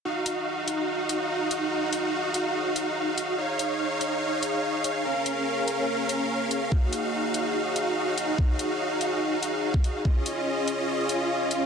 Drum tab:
HH |--x---x---x---x-|--x---x---x---x-|--x---x---x---x-|--x---x---x---x-|
BD |----------------|----------------|----------------|----------------|

HH |--x---x---x---x-|--x---x---x---x-|--x---x---x---x-|
BD |o---------------|o------------o--|o---------------|